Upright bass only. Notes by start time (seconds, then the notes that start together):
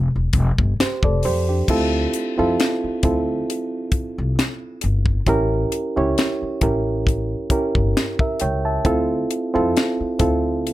0.16 E1
0.34 F1
0.59 G1
0.81 muted upright bass stroke
1.03 F1
1.25 F2
1.69 D2
2.39 F2
2.84 muted upright bass stroke
3.04 D2
3.93 muted upright bass stroke
4.18 C2
4.84 G1
5.27 A1
5.97 C#2
6.42 muted upright bass stroke
6.62 A1
7.51 muted upright bass stroke
7.76 G1
8.42 C#2
8.86 D2
9.55 F2
10.00 muted upright bass stroke
10.20 D2